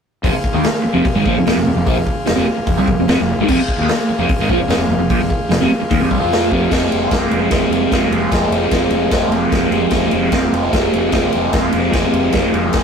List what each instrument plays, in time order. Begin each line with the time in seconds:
0.23 fingered electric bass F1, overdriven electric guitar F2 C3, kick, open hi-hat
0.29 transistor combo organ G#4 C5 F5, muted fingered electric bass stroke
0.33 muted overdriven electric guitar stroke
0.44 kick
0.53 fingered electric bass D#2, overdriven electric guitar D#3 A#3
0.64 muted fingered electric bass stroke, muted overdriven electric guitar stroke, snare, open hi-hat
0.84 muted overdriven electric guitar stroke, muted fingered electric bass stroke
0.93 fingered electric bass F1, overdriven electric guitar F2 C3
1.05 muted fingered electric bass stroke, muted overdriven electric guitar stroke, kick, open hi-hat
1.15 fingered electric bass G#1, overdriven electric guitar G#2 D#3
1.25 fingered electric bass A#1, overdriven electric guitar A#2 F3, kick
1.36 fingered electric bass F1, overdriven electric guitar F2 C3
1.46 fingered electric bass F1, overdriven electric guitar F2 C3, snare, open hi-hat
1.56 fingered electric bass F1, overdriven electric guitar F2 C3
1.66 fingered electric bass F1, overdriven electric guitar F2 C3
1.75 fingered electric bass F1, overdriven electric guitar F2 C3
1.86 fingered electric bass A#1, overdriven electric guitar A#2 F3, kick, open hi-hat
1.96 fingered electric bass F1, overdriven electric guitar F2 C3
2.07 kick
2.26 fingered electric bass F1, overdriven electric guitar F2 C3, snare, open hi-hat
2.36 fingered electric bass F1, overdriven electric guitar F2 C3
2.48 muted overdriven electric guitar stroke, muted fingered electric bass stroke
2.57 muted overdriven electric guitar stroke, muted fingered electric bass stroke
2.67 fingered electric bass F1, overdriven electric guitar F2 C3, kick, open hi-hat
2.78 fingered electric bass C2, overdriven electric guitar C3 G3
2.88 fingered electric bass F1, overdriven electric guitar F2 C3, kick
2.99 fingered electric bass F1, overdriven electric guitar F2 C3
3.08 fingered electric bass F1, overdriven electric guitar F2 C3, snare, open hi-hat
3.20 fingered electric bass F1, overdriven electric guitar F2 C3
3.38 fingered electric bass G#1, overdriven electric guitar G#2 D#3
3.48 fingered electric bass F1, overdriven electric guitar F2 C3, kick, crash
3.53 transistor combo organ G#4 C5 F5
3.58 muted fingered electric bass stroke, muted overdriven electric guitar stroke
3.68 kick
3.78 fingered electric bass D#2, overdriven electric guitar D#3
3.83 overdriven electric guitar A#3
3.88 muted fingered electric bass stroke, muted overdriven electric guitar stroke, snare, open hi-hat
4.09 muted fingered electric bass stroke, muted overdriven electric guitar stroke
4.19 fingered electric bass F1, overdriven electric guitar F2 C3
4.29 muted fingered electric bass stroke, muted overdriven electric guitar stroke, kick, open hi-hat
4.39 fingered electric bass G#1, overdriven electric guitar G#2 D#3
4.49 fingered electric bass A#1, overdriven electric guitar A#2 F3, kick
4.58 fingered electric bass F1, overdriven electric guitar F2 C3
4.67 fingered electric bass F1, overdriven electric guitar F2 C3, snare, open hi-hat
4.77 fingered electric bass F1
4.81 overdriven electric guitar F2 C3
4.88 fingered electric bass F1, overdriven electric guitar F2 C3
4.98 fingered electric bass F1, overdriven electric guitar F2 C3
5.10 fingered electric bass A#1, overdriven electric guitar A#2 F3, kick, open hi-hat
5.19 fingered electric bass F1, overdriven electric guitar F2 C3
5.30 kick
5.49 fingered electric bass F1, overdriven electric guitar F2 C3, snare, open hi-hat
5.61 fingered electric bass F1, overdriven electric guitar F2 C3
5.71 muted overdriven electric guitar stroke, muted fingered electric bass stroke
5.81 muted overdriven electric guitar stroke, muted fingered electric bass stroke
5.90 fingered electric bass D#2, overdriven electric guitar D#3 A#3, kick, open hi-hat
6.00 fingered electric bass F1, overdriven electric guitar F2 C3
6.10 fingered electric bass C2, overdriven electric guitar C3 G3, kick
6.19 fingered electric bass F2, overdriven electric guitar F3 C4 F4
6.32 snare, open hi-hat
6.51 fingered electric bass F1, overdriven electric guitar F2 C3 F3, kick
6.67 overdriven electric guitar F2, transistor combo organ G#4 C5 F5
6.71 fingered electric bass F1, overdriven electric guitar C3 F3 G#3 C4, kick, snare, crash
6.91 fingered electric bass F1, overdriven electric guitar F3 G#3 C4, ride
7.11 fingered electric bass F1, overdriven electric guitar C3 F3 G#3 C4, kick, snare, ride
7.31 fingered electric bass F1, ride
7.49 fingered electric bass F1, overdriven electric guitar F2 C3 F3 G#3 C4, kick, snare, ride
7.69 fingered electric bass F1, overdriven electric guitar C4, ride
7.73 overdriven electric guitar F3 G#3
7.91 fingered electric bass F1, overdriven electric guitar C3 F3 G#3 C4, kick, snare, ride
8.11 fingered electric bass F1, overdriven electric guitar F3 G#3 C4, ride
8.31 fingered electric bass F1, overdriven electric guitar F2 C3 F3 G#3 C4, kick, snare, ride
8.50 fingered electric bass F1, overdriven electric guitar G#3 C4, ride
8.55 overdriven electric guitar F3
8.71 fingered electric bass F1, overdriven electric guitar C3 F3 G#3, kick, snare, ride
8.76 overdriven electric guitar C4
8.90 fingered electric bass F1, ride
9.10 fingered electric bass F1, overdriven electric guitar F2 C3 F3 G#3 C4, kick, snare, ride
9.28 fingered electric bass F1, ride
9.33 overdriven electric guitar F3 G#3 C4
9.51 fingered electric bass F1, overdriven electric guitar C3 F3 G#3 C4, kick, snare, ride
9.70 fingered electric bass F1, overdriven electric guitar F3 G#3 C4, ride
9.91 fingered electric bass F1, overdriven electric guitar F2 C3 F3 G#3, transistor combo organ G#4 C5 F5, kick, snare, ride
9.95 overdriven electric guitar C4
10.11 fingered electric bass F1, overdriven electric guitar F3 G#3 C4, ride
10.32 fingered electric bass F1, overdriven electric guitar C3 F3 G#3 C4, kick, snare, ride
10.52 fingered electric bass F1, ride
10.71 fingered electric bass F1, overdriven electric guitar F2 C3 F3 G#3 C4, kick, snare, ride
10.92 fingered electric bass F1, overdriven electric guitar F3 G#3 C4, ride
11.12 fingered electric bass F1, overdriven electric guitar C3 F3 G#3 C4, kick, snare, ride
11.32 fingered electric bass F1, overdriven electric guitar F3 G#3 C4, ride
11.53 fingered electric bass F1, overdriven electric guitar F2 C3 F3 G#3, kick, snare, ride
11.57 overdriven electric guitar C4
11.72 fingered electric bass F1, overdriven electric guitar C4, ride
11.77 overdriven electric guitar F3 G#3
11.92 fingered electric bass F1, overdriven electric guitar C3 F3 G#3 C4, kick, snare, ride
12.12 fingered electric bass F1, ride
12.32 fingered electric bass F1, overdriven electric guitar F2 C3 F3 G#3, kick, snare, ride
12.37 overdriven electric guitar C4
12.54 fingered electric bass F1, overdriven electric guitar F3 G#3 C4, ride
12.73 fingered electric bass F1, overdriven electric guitar C3 F3 G#3, kick, snare, ride
12.78 overdriven electric guitar C4